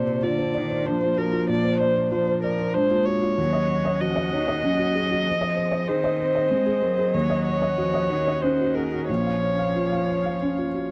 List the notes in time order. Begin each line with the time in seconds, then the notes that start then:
Already playing: A#2 C3 A#3 D4 F4 C5 D5
0.07 C5
0.23 D3 F4 D5
0.39 C5
0.54 D#3 D5
0.70 C5
0.85 F3 D4 C5
1.03 F4
1.17 F#4 A#4
1.33 F4
1.49 A#2 D5
1.65 C5
1.80 C5 D5
1.96 C5
2.12 F3 F4 C5
2.27 C5
2.43 A#4 D5
2.59 C5
2.74 G#3 D4 C5
2.90 F4
3.05 F#4 C#5
3.23 F4
3.38 D#2 F#3 C#4 D#5 F#5
3.53 D#5
3.69 C#5
3.85 D#5
4.00 F3 F#4 D#5
4.16 D#5
4.33 D#3 C#5
4.48 D#5
4.63 F#3 C#4
4.79 F#4
4.95 G#4
5.11 F#4
5.25 F3 C4 G#4
5.41 D#5
5.56 C5
5.72 D#5
5.88 D#3 G#4 C5
6.04 D#5
6.19 C5
6.35 D#5
6.50 G#3 C4
6.66 G#4
6.82 F#3 A#4
6.99 G#4
7.13 D#2 C#4 C#5 F#5
7.30 D#5
7.46 C#5
7.62 D#5
7.77 F3 F#4
7.94 D#5
8.10 D#3 C#5
8.27 D#5
8.41 D#3 C#4 C5
8.61 F#4
8.75 G#4 A#4
8.92 F#4
9.09 A#1 F3 F4 C#5 F5
9.27 F5
9.43 C#5
9.59 F5
9.76 F4
9.92 F5
10.09 C#5
10.26 F5
10.42 C#4
10.58 F4
10.74 F#4